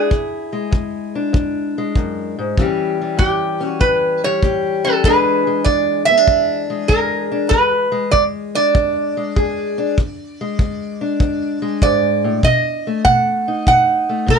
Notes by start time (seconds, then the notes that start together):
Already playing: G#3 E4 G#4
0.10 E2, kick
0.53 G#3
0.71 E2, kick
1.15 D4
1.33 E2, kick
1.78 G#3
1.96 F#2, kick
2.39 G#2
2.58 A2 E3 G3 C#4 G4, kick
3.01 G3
3.17 A2 G4, kick
3.61 C#4
3.65 F#4
3.79 A2 B4, kick
4.24 G3 C#5
4.43 A2 G4, kick
4.85 C#4 A4
5.04 E2 E3 G#3 D4 G#4 B4, kick
5.47 G#3
5.64 E2 D5, kick
6.05 E5
6.10 B3
6.17 D4
6.28 E2, kick
6.70 G#3
6.88 E2 G#4 A#4, kick
7.32 D4
7.49 E2 B4, kick
7.92 G#3
8.11 E2 D5, kick
8.55 D4 D5
8.74 E2, kick
9.17 G#3
9.36 E2 G#4, kick
9.78 D4
9.98 E2, kick
10.41 G#3
10.59 E2, kick
11.01 D4
11.20 E2, kick
11.62 G#3
11.82 G#2 D5, kick
12.24 A2
12.43 B2 D#5, kick
12.87 A3
13.05 B2 F#5, kick
13.48 D#4
13.67 B2 F#5, kick
14.09 A3
14.26 B2 F#4 B4, kick